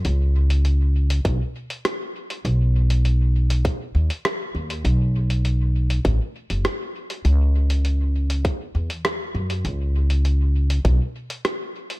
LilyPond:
<<
  \new Staff \with { instrumentName = "Upright bass" } { \clef bass \time 4/4 \key b \mixolydian \tempo 4 = 100 cis,2 b,,16 r4. r16 | b,,2 r8 dis,16 r8. dis,8 | b,,2 a,,16 r8 fis,,16 r4 | cis,2 r8 e,16 r8. fis,8 |
cis,2 b,,16 r4. r16 | }
  \new DrumStaff \with { instrumentName = "Drums" } \drummode { \time 4/4 hh8. hh16 hh8. hh16 <hh bd>8. hh16 <hh ss>8. hh16 | hh8. hh16 hh8. hh16 <hh bd>8. hh16 <hh ss>8. hh16 | hh8. hh16 hh8. hh16 <hh bd>8. hh16 <hh ss>8. hh16 | hh8. hh16 hh8. hh16 <hh bd>8. hh16 <hh ss>8. hh16 |
hh8. hh16 hh8. hh16 <hh bd>8. hh16 <hh ss>8. hh16 | }
>>